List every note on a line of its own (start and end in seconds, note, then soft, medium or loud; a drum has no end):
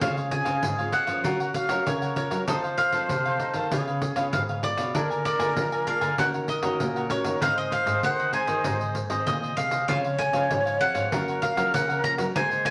0.01 0.41 C#3 medium
0.01 0.60 C#3 medium
0.01 0.20 G#3 medium
0.01 0.20 C4 medium
0.01 0.16 F4 medium
0.01 0.20 F4 medium
0.01 1.26 G#4 loud
0.01 0.16 C5 medium
0.01 0.16 C#5 medium
0.01 0.10 F5 medium
0.01 0.16 F5 medium
0.01 pandeiro medium
0.17 0.30 C5 soft
0.17 0.31 C#5 soft
0.17 0.31 F5 soft
0.17 pandeiro soft
0.31 0.61 G#3 medium
0.31 0.61 C4 soft
0.31 0.61 F4 medium
0.31 0.90 G#5 medium
0.31 muted cavaquinho stroke soft
0.31 pandeiro medium
0.45 0.60 C#3 loud
0.45 0.77 C5 medium
0.45 0.76 C#5 medium
0.45 0.76 F5 medium
0.45 pandeiro medium
0.63 0.89 G#2 medium
0.63 1.22 G#2 soft
0.63 pandeiro medium
0.78 1.05 G#3 medium
0.78 1.05 C4 medium
0.78 1.05 F4 medium
0.78 0.92 C5 soft
0.78 0.92 C#5 soft
0.78 0.93 F5 medium
0.78 pandeiro soft
0.92 1.07 F4 soft
0.92 1.07 C5 medium
0.92 1.06 C#5 medium
0.92 1.05 F5 medium
0.92 1.51 F#5 medium
0.92 pandeiro medium
1.07 1.22 F3 medium
1.07 1.66 C#4 medium
1.07 1.66 A#4 medium
1.07 1.23 C5 medium
1.07 1.23 C#5 medium
1.07 1.22 F5 medium
1.07 pandeiro medium
1.24 1.83 F#3 soft
1.24 1.64 F#3 medium
1.24 1.39 F4 medium
1.24 1.87 F#4 medium
1.24 1.39 A#4 medium
1.24 1.39 C#5 medium
1.24 1.39 F#5 medium
1.24 pandeiro medium
1.40 1.54 A#4 soft
1.40 1.54 C#5 soft
1.40 1.54 F#5 medium
1.40 pandeiro soft
1.54 1.87 F5 medium
1.54 muted cavaquinho stroke soft
1.54 pandeiro medium
1.69 1.83 F#3 medium
1.69 2.11 C#4 medium
1.69 2.11 F4 medium
1.69 2.12 A#4 medium
1.69 2.01 A#4 medium
1.69 2.00 C#5 medium
1.69 2.00 F#5 medium
1.69 pandeiro medium
1.86 2.45 C#3 soft
1.86 2.26 C#3 medium
1.86 2.47 A#4 medium
1.86 2.15 C#5 medium
1.86 pandeiro medium
2.02 2.31 A#4 soft
2.02 2.30 C#5 soft
2.02 2.29 F#5 medium
2.02 pandeiro soft
2.16 2.35 C#4 medium
2.16 2.35 F4 medium
2.16 2.35 A#4 medium
2.16 2.46 C#5 medium
2.16 pandeiro medium
2.30 2.45 F#3 medium
2.30 2.47 A#4 soft
2.30 2.46 C#5 soft
2.30 2.46 F#5 soft
2.30 pandeiro medium
2.47 3.07 F3 medium
2.47 2.87 F3 medium
2.47 2.89 C4 medium
2.47 2.62 D#4 medium
2.47 2.89 D#4 medium
2.47 2.90 A4 medium
2.47 2.62 A4 medium
2.47 3.67 C5 loud
2.47 2.63 C5 medium
2.47 2.57 D#5 medium
2.47 2.63 F5 medium
2.47 pandeiro medium
2.64 2.77 A4 soft
2.64 2.77 C5 soft
2.64 2.77 F5 soft
2.64 pandeiro soft
2.77 4.32 F5 medium
2.77 muted cavaquinho stroke soft
2.77 pandeiro medium
2.92 3.06 F3 loud
2.92 3.35 C4 medium
2.92 3.35 D#4 medium
2.92 3.35 A4 medium
2.92 3.24 A4 soft
2.92 3.24 C5 medium
2.92 3.23 F5 medium
2.92 pandeiro medium
3.09 3.68 C3 medium
3.09 3.36 C3 medium
3.09 pandeiro medium
3.25 3.40 A4 soft
3.25 3.40 C5 medium
3.25 3.40 F5 medium
3.25 pandeiro soft
3.38 3.58 C4 medium
3.38 3.58 D#4 medium
3.38 3.55 D#4 soft
3.38 3.58 A4 medium
3.38 3.55 A4 soft
3.38 3.55 C5 medium
3.38 pandeiro medium
3.42 3.54 F5 medium
3.54 3.68 D#3 medium
3.54 3.70 A4 medium
3.54 3.70 C5 medium
3.54 3.70 F5 medium
3.54 pandeiro medium
3.70 4.30 C#3 medium
3.70 4.11 C#3 medium
3.70 4.12 B3 medium
3.70 4.13 F4 medium
3.70 3.86 F4 medium
3.70 4.64 G#4 medium
3.70 4.13 G#4 medium
3.70 3.86 B4 medium
3.70 3.86 C#5 medium
3.70 3.87 F5 medium
3.70 pandeiro medium
3.87 4.01 B4 soft
3.87 4.02 C#5 soft
3.87 4.02 F5 soft
3.87 pandeiro soft
4.02 muted cavaquinho stroke soft
4.02 pandeiro medium
4.15 4.30 C#3 medium
4.15 4.58 B3 medium
4.15 4.58 F4 medium
4.15 4.58 G#4 medium
4.15 4.48 B4 medium
4.15 4.47 C#5 medium
4.15 4.47 F5 medium
4.15 pandeiro medium
4.32 4.91 G#2 soft
4.32 4.72 G#2 medium
4.32 4.41 F5 medium
4.32 pandeiro medium
4.49 4.78 B4 soft
4.49 4.78 C#5 soft
4.49 4.77 F5 medium
4.49 pandeiro soft
4.63 4.82 B3 medium
4.63 4.82 F4 medium
4.63 4.82 G#4 medium
4.63 5.22 D5 medium
4.63 pandeiro medium
4.78 4.92 B2 medium
4.78 4.94 B4 soft
4.78 4.93 C#5 soft
4.78 4.93 F5 medium
4.78 pandeiro medium
4.94 5.53 D3 medium
4.94 5.34 D3 medium
4.94 5.24 A#3 medium
4.94 5.09 D4 medium
4.94 5.24 F4 medium
4.94 5.24 G#4 medium
4.94 6.14 A#4 loud
4.94 5.09 A#4 medium
4.94 5.09 D5 medium
4.94 5.09 G#5 medium
4.94 pandeiro medium
5.10 5.24 A#4 soft
5.10 5.24 D5 soft
5.10 5.25 G#5 soft
5.10 pandeiro soft
5.25 5.83 D5 medium
5.25 muted cavaquinho stroke soft
5.25 pandeiro medium
5.38 5.53 D3 medium
5.38 5.81 A#3 medium
5.38 5.81 F4 medium
5.38 5.82 G#4 medium
5.38 5.71 A#4 medium
5.38 5.71 D5 medium
5.38 5.70 G#5 medium
5.38 pandeiro medium
5.56 6.15 D3 medium
5.56 5.83 F3 medium
5.56 pandeiro medium
5.72 5.86 A#4 soft
5.72 5.87 D5 soft
5.72 5.86 G#5 medium
5.72 pandeiro soft
5.86 6.13 A#3 medium
5.86 6.01 D4 soft
5.86 6.13 F4 medium
5.86 6.13 G#4 medium
5.86 6.02 A#4 medium
5.86 6.01 D5 medium
5.86 6.19 F5 medium
5.86 6.00 G#5 soft
5.86 pandeiro medium
6.01 6.15 D3 loud
6.01 6.17 A#4 medium
6.01 6.17 D5 medium
6.01 6.16 G#5 medium
6.01 pandeiro medium
6.18 6.58 D#3 medium
6.18 6.77 D#3 medium
6.18 6.47 A#3 medium
6.18 6.48 C#4 medium
6.18 6.32 D#4 medium
6.18 6.48 F#4 medium
6.18 6.33 A#4 medium
6.18 7.44 A#4 medium
6.18 6.33 C#5 medium
6.18 6.27 F#5 medium
6.18 6.33 F#5 medium
6.18 pandeiro medium
6.34 6.48 A#4 soft
6.34 6.48 C#5 soft
6.34 6.48 F#5 soft
6.34 pandeiro soft
6.48 7.07 D#5 medium
6.48 muted cavaquinho stroke soft
6.48 pandeiro medium
6.62 6.77 D#3 medium
6.62 7.05 A#3 medium
6.62 7.05 C#4 medium
6.62 7.06 F#4 medium
6.62 6.94 A#4 medium
6.62 6.94 C#5 medium
6.62 6.93 F#5 medium
6.62 pandeiro medium
6.80 7.19 A#2 medium
6.80 7.39 A#2 soft
6.80 pandeiro medium
6.96 7.25 A#4 soft
6.96 7.24 C#5 soft
6.96 7.23 F#5 soft
6.96 pandeiro soft
7.10 7.36 A#3 medium
7.10 7.37 C#4 medium
7.10 7.37 F#4 medium
7.10 7.39 C#5 medium
7.10 pandeiro medium
7.24 7.38 D#3 medium
7.24 7.40 A#4 soft
7.24 7.40 C#5 soft
7.24 7.40 F#5 soft
7.24 pandeiro medium
7.40 7.81 G#2 medium
7.40 8.00 G#2 medium
7.40 7.71 D#3 medium
7.40 7.71 G#3 medium
7.40 7.71 C4 medium
7.40 7.55 D#4 medium
7.40 7.56 G#4 medium
7.40 7.56 C5 medium
7.40 9.58 C5 loud
7.40 7.55 D#5 medium
7.40 7.56 F5 medium
7.40 pandeiro medium
7.56 7.70 G#4 soft
7.56 7.70 C5 soft
7.56 7.70 D#5 soft
7.56 7.72 D#5 medium
7.56 pandeiro soft
7.71 8.04 F5 medium
7.71 muted cavaquinho stroke soft
7.71 pandeiro medium
7.85 8.00 G#2 medium
7.85 8.02 D#3 medium
7.85 8.29 G#3 medium
7.85 8.29 C4 medium
7.85 8.17 G#4 soft
7.85 8.17 C5 medium
7.85 8.16 D#5 medium
7.85 pandeiro medium
8.03 8.30 D#3 medium
8.03 8.32 D#3 medium
8.03 8.33 F#5 medium
8.03 pandeiro medium
8.19 8.32 G#4 soft
8.19 8.32 C5 soft
8.19 8.33 D#5 soft
8.19 pandeiro soft
8.33 8.52 D#3 medium
8.33 8.52 G#3 medium
8.33 8.52 C4 medium
8.33 8.48 D#4 soft
8.33 8.48 G#4 medium
8.33 8.47 C5 medium
8.33 8.46 D#5 medium
8.33 9.29 G#5 medium
8.33 pandeiro soft
8.47 8.62 D#3 loud
8.47 8.63 G#4 medium
8.47 8.63 C5 medium
8.47 8.63 D#5 medium
8.47 pandeiro medium
8.64 9.24 G#2 soft
8.64 9.04 G#2 medium
8.64 9.06 D#3 medium
8.64 9.06 G#3 medium
8.64 9.07 C4 medium
8.64 8.79 D#4 medium
8.64 8.79 G#4 medium
8.64 8.79 C5 medium
8.64 8.79 D#5 medium
8.64 pandeiro medium
8.80 8.94 G#4 soft
8.80 8.94 C5 soft
8.80 8.95 D#5 soft
8.80 pandeiro soft
8.95 muted cavaquinho stroke soft
8.95 pandeiro medium
9.10 9.23 G#2 medium
9.10 9.25 D#3 medium
9.10 9.52 G#3 medium
9.10 9.52 C4 medium
9.10 9.41 G#4 medium
9.10 9.41 C5 medium
9.10 9.40 D#5 medium
9.10 pandeiro medium
9.26 9.54 A#2 medium
9.26 9.55 D#3 medium
9.26 9.55 D#5 medium
9.26 pandeiro medium
9.42 9.72 G#4 soft
9.42 9.72 C5 soft
9.42 9.70 D#5 soft
9.42 pandeiro soft
9.56 9.85 C3 medium
9.56 9.75 D#3 medium
9.56 9.75 G#3 medium
9.56 9.76 C4 medium
9.56 9.86 F5 medium
9.56 pandeiro medium
9.71 9.87 G#4 soft
9.71 9.87 C5 soft
9.71 9.86 D#5 soft
9.71 pandeiro medium
9.88 10.47 C#3 medium
9.88 10.28 C#3 medium
9.88 10.17 F3 medium
9.88 10.17 G#3 medium
9.88 10.18 C4 medium
9.88 10.03 F4 medium
9.88 10.03 C5 medium
9.88 11.13 C#5 loud
9.88 10.03 C#5 medium
9.88 9.97 F5 loud
9.88 10.04 F5 medium
9.88 pandeiro medium
10.04 10.18 C5 soft
10.04 10.18 C#5 soft
10.04 10.19 F5 medium
10.04 pandeiro soft
10.18 10.77 G#5 loud
10.18 muted cavaquinho stroke soft
10.18 pandeiro medium
10.33 10.47 C#3 loud
10.33 10.75 F3 medium
10.33 10.75 G#3 medium
10.33 10.65 C5 medium
10.33 10.64 C#5 medium
10.33 10.64 F5 medium
10.33 pandeiro medium
10.50 10.76 G#2 medium
10.50 11.09 G#2 medium
10.50 pandeiro medium
10.66 10.79 C5 soft
10.66 10.80 C#5 soft
10.66 10.80 F5 medium
10.66 pandeiro soft
10.80 11.07 F3 medium
10.80 11.07 G#3 medium
10.80 11.07 C4 medium
10.80 10.95 F4 soft
10.80 10.95 C5 soft
10.80 10.94 C#5 medium
10.80 10.93 F5 medium
10.80 11.42 F#5 medium
10.80 pandeiro medium
10.94 11.08 G#2 medium
10.94 11.11 C5 medium
10.94 11.10 C#5 medium
10.94 11.10 F5 medium
10.94 pandeiro medium
11.11 11.71 F#2 medium
11.11 11.51 F#3 medium
11.11 11.53 A#3 medium
11.11 11.54 C#4 medium
11.11 11.26 F4 medium
11.11 12.33 A#4 loud
11.11 11.27 A#4 medium
11.11 11.27 C#5 medium
11.11 11.27 F#5 medium
11.11 pandeiro medium
11.28 11.42 A#4 soft
11.28 11.42 C#5 soft
11.28 11.42 F#5 soft
11.28 pandeiro soft
11.42 11.74 F5 medium
11.42 muted cavaquinho stroke soft
11.42 pandeiro medium
11.56 11.99 F3 medium
11.56 11.70 F#3 medium
11.56 11.99 A#3 medium
11.56 11.99 C#4 medium
11.56 11.88 A#4 medium
11.56 11.87 C#5 medium
11.56 11.87 F#5 medium
11.56 pandeiro medium
11.73 12.32 C#3 medium
11.73 12.13 C#3 medium
11.73 12.04 F#5 medium
11.73 pandeiro medium
11.89 12.18 A#4 soft
11.89 12.18 C#5 soft
11.89 12.17 F#5 medium
11.89 pandeiro soft
12.04 12.30 F3 medium
12.04 12.30 A#3 medium
12.04 12.30 C#4 medium
12.04 12.12 A#5 loud
12.04 pandeiro medium
12.18 12.32 F#3 medium
12.18 12.34 A#4 soft
12.18 12.33 C#5 soft
12.18 12.33 F#5 soft
12.18 pandeiro medium
12.34 12.70 G#2 medium
12.34 12.70 D#3 medium
12.34 12.70 G#3 medium
12.34 12.70 A#3 medium
12.34 12.70 C4 medium
12.34 12.49 A#4 medium
12.34 12.70 C5 loud
12.34 12.50 C5 medium
12.34 12.64 G#5 loud
12.34 12.50 G#5 medium
12.34 pandeiro medium
12.51 12.64 C5 soft
12.51 12.65 G#5 medium
12.51 pandeiro soft
12.65 12.70 G#5 loud
12.65 muted cavaquinho stroke soft
12.65 pandeiro medium